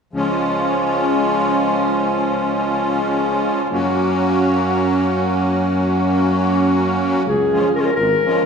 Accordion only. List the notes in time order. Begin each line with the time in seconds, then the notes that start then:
0.13 F3 G#3 C#4 F4
3.69 F#3 A#3 C#4
3.74 F#4
7.51 F3 G#3 C#4 F4
7.73 F3 G#3 C#4 F4
8.24 F3 G#3 C#4 F4